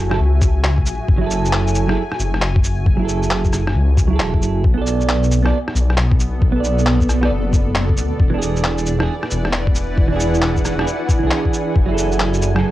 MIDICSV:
0, 0, Header, 1, 5, 480
1, 0, Start_track
1, 0, Key_signature, 3, "minor"
1, 0, Tempo, 444444
1, 1175, Time_signature, 4, 2, 24, 8
1, 13729, End_track
2, 0, Start_track
2, 0, Title_t, "Ambient pad"
2, 0, Program_c, 0, 92
2, 0, Note_on_c, 0, 66, 71
2, 0, Note_on_c, 0, 76, 75
2, 0, Note_on_c, 0, 80, 81
2, 5008, Note_on_c, 0, 59, 81
2, 5278, Note_on_c, 0, 69, 73
2, 5445, Note_on_c, 0, 74, 80
2, 6194, Note_off_c, 0, 76, 0
2, 6575, Note_off_c, 0, 80, 0
2, 8847, Note_on_c, 0, 64, 77
2, 8855, Note_off_c, 0, 69, 0
2, 9033, Note_on_c, 0, 71, 94
2, 9046, Note_on_c, 0, 78, 92
2, 9080, Note_on_c, 0, 80, 85
2, 10412, Note_off_c, 0, 66, 0
2, 10414, Note_off_c, 0, 59, 0
2, 12687, Note_on_c, 0, 66, 91
2, 12690, Note_off_c, 0, 74, 0
2, 13462, Note_off_c, 0, 71, 0
2, 13729, Note_off_c, 0, 64, 0
2, 13729, Note_off_c, 0, 66, 0
2, 13729, Note_off_c, 0, 78, 0
2, 13729, Note_off_c, 0, 80, 0
2, 13729, End_track
3, 0, Start_track
3, 0, Title_t, "Clean electric guitar"
3, 0, Program_c, 1, 27
3, 0, Note_on_c, 1, 69, 80
3, 104, Note_on_c, 1, 54, 82
3, 112, Note_off_c, 1, 69, 0
3, 117, Note_on_c, 1, 64, 73
3, 132, Note_on_c, 1, 68, 73
3, 144, Note_off_c, 1, 68, 0
3, 149, Note_on_c, 1, 69, 87
3, 187, Note_off_c, 1, 54, 0
3, 194, Note_off_c, 1, 64, 0
3, 210, Note_off_c, 1, 69, 0
3, 1277, Note_on_c, 1, 54, 91
3, 1309, Note_on_c, 1, 64, 84
3, 1335, Note_on_c, 1, 68, 80
3, 1361, Note_off_c, 1, 68, 0
3, 1365, Note_on_c, 1, 69, 102
3, 1986, Note_off_c, 1, 54, 0
3, 2002, Note_off_c, 1, 64, 0
3, 2019, Note_on_c, 1, 54, 82
3, 2030, Note_off_c, 1, 69, 0
3, 2034, Note_on_c, 1, 64, 78
3, 2048, Note_on_c, 1, 68, 75
3, 2066, Note_on_c, 1, 69, 91
3, 2168, Note_off_c, 1, 54, 0
3, 2176, Note_off_c, 1, 64, 0
3, 2182, Note_off_c, 1, 68, 0
3, 2192, Note_off_c, 1, 69, 0
3, 3206, Note_on_c, 1, 54, 73
3, 3233, Note_on_c, 1, 64, 65
3, 3265, Note_on_c, 1, 68, 67
3, 3294, Note_on_c, 1, 69, 82
3, 3910, Note_off_c, 1, 54, 0
3, 3924, Note_off_c, 1, 64, 0
3, 3940, Note_off_c, 1, 68, 0
3, 3954, Note_off_c, 1, 69, 0
3, 4402, Note_on_c, 1, 54, 73
3, 4432, Note_on_c, 1, 64, 67
3, 4460, Note_on_c, 1, 68, 70
3, 4490, Note_on_c, 1, 69, 82
3, 4982, Note_off_c, 1, 54, 0
3, 4997, Note_off_c, 1, 64, 0
3, 5011, Note_off_c, 1, 68, 0
3, 5026, Note_off_c, 1, 69, 0
3, 5119, Note_on_c, 1, 59, 89
3, 5159, Note_on_c, 1, 69, 81
3, 5202, Note_on_c, 1, 74, 100
3, 5827, Note_off_c, 1, 59, 0
3, 5847, Note_off_c, 1, 69, 0
3, 5860, Note_on_c, 1, 59, 83
3, 5868, Note_off_c, 1, 74, 0
3, 5881, Note_on_c, 1, 69, 74
3, 5906, Note_on_c, 1, 74, 89
3, 6008, Note_off_c, 1, 59, 0
3, 6019, Note_off_c, 1, 69, 0
3, 6031, Note_off_c, 1, 74, 0
3, 7044, Note_on_c, 1, 59, 73
3, 7086, Note_on_c, 1, 69, 66
3, 7130, Note_on_c, 1, 74, 78
3, 7749, Note_off_c, 1, 59, 0
3, 7770, Note_off_c, 1, 69, 0
3, 7789, Note_on_c, 1, 59, 78
3, 7792, Note_off_c, 1, 74, 0
3, 7807, Note_on_c, 1, 69, 72
3, 7827, Note_off_c, 1, 69, 0
3, 7832, Note_on_c, 1, 74, 89
3, 7870, Note_off_c, 1, 59, 0
3, 7891, Note_off_c, 1, 74, 0
3, 8965, Note_on_c, 1, 52, 90
3, 9010, Note_on_c, 1, 62, 84
3, 9054, Note_on_c, 1, 68, 100
3, 9670, Note_off_c, 1, 52, 0
3, 9692, Note_off_c, 1, 62, 0
3, 9709, Note_on_c, 1, 52, 85
3, 9715, Note_off_c, 1, 68, 0
3, 9731, Note_on_c, 1, 62, 77
3, 9753, Note_on_c, 1, 68, 93
3, 9853, Note_off_c, 1, 52, 0
3, 9864, Note_off_c, 1, 62, 0
3, 9875, Note_off_c, 1, 68, 0
3, 10886, Note_on_c, 1, 52, 74
3, 10932, Note_on_c, 1, 62, 69
3, 10972, Note_on_c, 1, 68, 78
3, 11590, Note_off_c, 1, 52, 0
3, 11614, Note_off_c, 1, 62, 0
3, 11628, Note_on_c, 1, 52, 82
3, 11633, Note_off_c, 1, 68, 0
3, 11650, Note_on_c, 1, 62, 72
3, 11672, Note_on_c, 1, 68, 91
3, 11709, Note_off_c, 1, 52, 0
3, 11720, Note_off_c, 1, 62, 0
3, 11731, Note_off_c, 1, 68, 0
3, 12083, Note_on_c, 1, 52, 72
3, 12128, Note_on_c, 1, 62, 68
3, 12170, Note_on_c, 1, 68, 81
3, 12663, Note_off_c, 1, 52, 0
3, 12685, Note_off_c, 1, 62, 0
3, 12706, Note_off_c, 1, 68, 0
3, 12806, Note_on_c, 1, 54, 89
3, 12834, Note_on_c, 1, 64, 81
3, 12868, Note_on_c, 1, 68, 79
3, 12895, Note_on_c, 1, 69, 100
3, 13511, Note_off_c, 1, 54, 0
3, 13525, Note_off_c, 1, 64, 0
3, 13541, Note_off_c, 1, 68, 0
3, 13551, Note_on_c, 1, 54, 83
3, 13555, Note_off_c, 1, 69, 0
3, 13564, Note_on_c, 1, 64, 75
3, 13579, Note_on_c, 1, 68, 75
3, 13594, Note_on_c, 1, 69, 90
3, 13694, Note_off_c, 1, 54, 0
3, 13701, Note_off_c, 1, 64, 0
3, 13708, Note_off_c, 1, 68, 0
3, 13715, Note_off_c, 1, 69, 0
3, 13729, End_track
4, 0, Start_track
4, 0, Title_t, "Detuned saw bass"
4, 0, Program_c, 2, 39
4, 0, Note_on_c, 2, 30, 98
4, 202, Note_off_c, 2, 30, 0
4, 218, Note_on_c, 2, 37, 89
4, 937, Note_on_c, 2, 33, 95
4, 953, Note_off_c, 2, 37, 0
4, 1077, Note_off_c, 2, 33, 0
4, 1169, Note_on_c, 2, 30, 99
4, 2121, Note_off_c, 2, 30, 0
4, 2371, Note_on_c, 2, 30, 85
4, 3082, Note_off_c, 2, 30, 0
4, 3095, Note_on_c, 2, 30, 97
4, 4044, Note_off_c, 2, 30, 0
4, 4055, Note_on_c, 2, 37, 87
4, 4527, Note_off_c, 2, 37, 0
4, 4533, Note_on_c, 2, 28, 80
4, 4760, Note_off_c, 2, 28, 0
4, 4767, Note_on_c, 2, 30, 96
4, 4997, Note_off_c, 2, 30, 0
4, 5015, Note_on_c, 2, 35, 94
4, 5964, Note_off_c, 2, 35, 0
4, 6210, Note_on_c, 2, 35, 85
4, 6922, Note_off_c, 2, 35, 0
4, 6933, Note_on_c, 2, 35, 95
4, 7883, Note_off_c, 2, 35, 0
4, 7888, Note_on_c, 2, 30, 88
4, 8616, Note_on_c, 2, 38, 97
4, 8632, Note_off_c, 2, 30, 0
4, 8756, Note_off_c, 2, 38, 0
4, 8853, Note_on_c, 2, 28, 98
4, 9803, Note_off_c, 2, 28, 0
4, 10062, Note_on_c, 2, 28, 87
4, 10767, Note_off_c, 2, 28, 0
4, 10774, Note_on_c, 2, 28, 93
4, 11724, Note_off_c, 2, 28, 0
4, 12131, Note_on_c, 2, 35, 100
4, 12210, Note_off_c, 2, 35, 0
4, 12696, Note_on_c, 2, 30, 93
4, 13645, Note_off_c, 2, 30, 0
4, 13729, End_track
5, 0, Start_track
5, 0, Title_t, "Drums"
5, 121, Note_on_c, 9, 37, 61
5, 229, Note_off_c, 9, 37, 0
5, 448, Note_on_c, 9, 36, 105
5, 449, Note_on_c, 9, 82, 57
5, 556, Note_off_c, 9, 36, 0
5, 557, Note_off_c, 9, 82, 0
5, 692, Note_on_c, 9, 39, 102
5, 800, Note_off_c, 9, 39, 0
5, 840, Note_on_c, 9, 36, 61
5, 930, Note_on_c, 9, 82, 54
5, 948, Note_off_c, 9, 36, 0
5, 1038, Note_off_c, 9, 82, 0
5, 1170, Note_on_c, 9, 36, 114
5, 1278, Note_off_c, 9, 36, 0
5, 1412, Note_on_c, 9, 82, 53
5, 1520, Note_off_c, 9, 82, 0
5, 1570, Note_on_c, 9, 82, 30
5, 1650, Note_on_c, 9, 39, 104
5, 1678, Note_off_c, 9, 82, 0
5, 1758, Note_off_c, 9, 39, 0
5, 1808, Note_on_c, 9, 82, 30
5, 1891, Note_off_c, 9, 82, 0
5, 1891, Note_on_c, 9, 82, 52
5, 1999, Note_off_c, 9, 82, 0
5, 2043, Note_on_c, 9, 37, 60
5, 2151, Note_off_c, 9, 37, 0
5, 2285, Note_on_c, 9, 37, 45
5, 2371, Note_on_c, 9, 82, 53
5, 2393, Note_off_c, 9, 37, 0
5, 2479, Note_off_c, 9, 82, 0
5, 2527, Note_on_c, 9, 37, 48
5, 2611, Note_on_c, 9, 39, 102
5, 2635, Note_off_c, 9, 37, 0
5, 2719, Note_off_c, 9, 39, 0
5, 2764, Note_on_c, 9, 36, 102
5, 2851, Note_on_c, 9, 82, 54
5, 2872, Note_off_c, 9, 36, 0
5, 2959, Note_off_c, 9, 82, 0
5, 3091, Note_on_c, 9, 36, 112
5, 3199, Note_off_c, 9, 36, 0
5, 3334, Note_on_c, 9, 82, 51
5, 3442, Note_off_c, 9, 82, 0
5, 3489, Note_on_c, 9, 82, 30
5, 3573, Note_on_c, 9, 39, 100
5, 3597, Note_off_c, 9, 82, 0
5, 3681, Note_off_c, 9, 39, 0
5, 3723, Note_on_c, 9, 82, 29
5, 3725, Note_on_c, 9, 36, 59
5, 3812, Note_off_c, 9, 82, 0
5, 3812, Note_on_c, 9, 37, 33
5, 3812, Note_on_c, 9, 82, 50
5, 3833, Note_off_c, 9, 36, 0
5, 3920, Note_off_c, 9, 37, 0
5, 3920, Note_off_c, 9, 82, 0
5, 3968, Note_on_c, 9, 37, 58
5, 4076, Note_off_c, 9, 37, 0
5, 4293, Note_on_c, 9, 36, 106
5, 4298, Note_on_c, 9, 82, 54
5, 4401, Note_off_c, 9, 36, 0
5, 4406, Note_off_c, 9, 82, 0
5, 4535, Note_on_c, 9, 39, 103
5, 4643, Note_off_c, 9, 39, 0
5, 4687, Note_on_c, 9, 36, 60
5, 4778, Note_on_c, 9, 82, 52
5, 4795, Note_off_c, 9, 36, 0
5, 4886, Note_off_c, 9, 82, 0
5, 5016, Note_on_c, 9, 36, 108
5, 5124, Note_off_c, 9, 36, 0
5, 5258, Note_on_c, 9, 82, 52
5, 5366, Note_off_c, 9, 82, 0
5, 5411, Note_on_c, 9, 82, 28
5, 5501, Note_on_c, 9, 39, 101
5, 5519, Note_off_c, 9, 82, 0
5, 5609, Note_off_c, 9, 39, 0
5, 5654, Note_on_c, 9, 82, 29
5, 5742, Note_off_c, 9, 82, 0
5, 5742, Note_on_c, 9, 82, 50
5, 5850, Note_off_c, 9, 82, 0
5, 5894, Note_on_c, 9, 37, 59
5, 6002, Note_off_c, 9, 37, 0
5, 6133, Note_on_c, 9, 37, 45
5, 6220, Note_on_c, 9, 82, 49
5, 6241, Note_off_c, 9, 37, 0
5, 6328, Note_off_c, 9, 82, 0
5, 6373, Note_on_c, 9, 37, 46
5, 6454, Note_on_c, 9, 39, 102
5, 6481, Note_off_c, 9, 37, 0
5, 6562, Note_off_c, 9, 39, 0
5, 6605, Note_on_c, 9, 36, 100
5, 6697, Note_on_c, 9, 82, 50
5, 6713, Note_off_c, 9, 36, 0
5, 6805, Note_off_c, 9, 82, 0
5, 6932, Note_on_c, 9, 36, 109
5, 7040, Note_off_c, 9, 36, 0
5, 7174, Note_on_c, 9, 82, 49
5, 7282, Note_off_c, 9, 82, 0
5, 7328, Note_on_c, 9, 82, 28
5, 7413, Note_on_c, 9, 39, 95
5, 7436, Note_off_c, 9, 82, 0
5, 7521, Note_off_c, 9, 39, 0
5, 7564, Note_on_c, 9, 36, 58
5, 7571, Note_on_c, 9, 82, 29
5, 7659, Note_off_c, 9, 82, 0
5, 7659, Note_on_c, 9, 37, 33
5, 7659, Note_on_c, 9, 82, 48
5, 7672, Note_off_c, 9, 36, 0
5, 7767, Note_off_c, 9, 37, 0
5, 7767, Note_off_c, 9, 82, 0
5, 7806, Note_on_c, 9, 37, 61
5, 7914, Note_off_c, 9, 37, 0
5, 8132, Note_on_c, 9, 36, 95
5, 8135, Note_on_c, 9, 82, 52
5, 8240, Note_off_c, 9, 36, 0
5, 8243, Note_off_c, 9, 82, 0
5, 8374, Note_on_c, 9, 39, 96
5, 8482, Note_off_c, 9, 39, 0
5, 8526, Note_on_c, 9, 36, 57
5, 8612, Note_on_c, 9, 82, 50
5, 8634, Note_off_c, 9, 36, 0
5, 8720, Note_off_c, 9, 82, 0
5, 8852, Note_on_c, 9, 36, 105
5, 8960, Note_off_c, 9, 36, 0
5, 9096, Note_on_c, 9, 82, 53
5, 9204, Note_off_c, 9, 82, 0
5, 9249, Note_on_c, 9, 82, 28
5, 9335, Note_on_c, 9, 39, 94
5, 9357, Note_off_c, 9, 82, 0
5, 9443, Note_off_c, 9, 39, 0
5, 9485, Note_on_c, 9, 82, 29
5, 9572, Note_off_c, 9, 82, 0
5, 9572, Note_on_c, 9, 82, 49
5, 9680, Note_off_c, 9, 82, 0
5, 9722, Note_on_c, 9, 37, 65
5, 9830, Note_off_c, 9, 37, 0
5, 9968, Note_on_c, 9, 37, 49
5, 10054, Note_on_c, 9, 82, 53
5, 10076, Note_off_c, 9, 37, 0
5, 10162, Note_off_c, 9, 82, 0
5, 10206, Note_on_c, 9, 37, 51
5, 10292, Note_on_c, 9, 39, 95
5, 10314, Note_off_c, 9, 37, 0
5, 10400, Note_off_c, 9, 39, 0
5, 10445, Note_on_c, 9, 36, 96
5, 10533, Note_on_c, 9, 82, 50
5, 10553, Note_off_c, 9, 36, 0
5, 10641, Note_off_c, 9, 82, 0
5, 10774, Note_on_c, 9, 36, 107
5, 10882, Note_off_c, 9, 36, 0
5, 11016, Note_on_c, 9, 82, 54
5, 11124, Note_off_c, 9, 82, 0
5, 11170, Note_on_c, 9, 82, 31
5, 11255, Note_on_c, 9, 39, 95
5, 11278, Note_off_c, 9, 82, 0
5, 11363, Note_off_c, 9, 39, 0
5, 11407, Note_on_c, 9, 36, 54
5, 11411, Note_on_c, 9, 82, 30
5, 11502, Note_off_c, 9, 82, 0
5, 11502, Note_on_c, 9, 37, 36
5, 11502, Note_on_c, 9, 82, 52
5, 11515, Note_off_c, 9, 36, 0
5, 11610, Note_off_c, 9, 37, 0
5, 11610, Note_off_c, 9, 82, 0
5, 11654, Note_on_c, 9, 37, 65
5, 11742, Note_on_c, 9, 82, 29
5, 11762, Note_off_c, 9, 37, 0
5, 11850, Note_off_c, 9, 82, 0
5, 11974, Note_on_c, 9, 36, 97
5, 11980, Note_on_c, 9, 82, 56
5, 12082, Note_off_c, 9, 36, 0
5, 12088, Note_off_c, 9, 82, 0
5, 12213, Note_on_c, 9, 39, 97
5, 12321, Note_off_c, 9, 39, 0
5, 12368, Note_on_c, 9, 36, 56
5, 12457, Note_on_c, 9, 82, 50
5, 12476, Note_off_c, 9, 36, 0
5, 12565, Note_off_c, 9, 82, 0
5, 12694, Note_on_c, 9, 36, 110
5, 12802, Note_off_c, 9, 36, 0
5, 12936, Note_on_c, 9, 82, 56
5, 13044, Note_off_c, 9, 82, 0
5, 13088, Note_on_c, 9, 82, 31
5, 13173, Note_on_c, 9, 39, 102
5, 13196, Note_off_c, 9, 82, 0
5, 13281, Note_off_c, 9, 39, 0
5, 13325, Note_on_c, 9, 82, 32
5, 13414, Note_off_c, 9, 82, 0
5, 13414, Note_on_c, 9, 82, 53
5, 13522, Note_off_c, 9, 82, 0
5, 13562, Note_on_c, 9, 37, 64
5, 13670, Note_off_c, 9, 37, 0
5, 13729, End_track
0, 0, End_of_file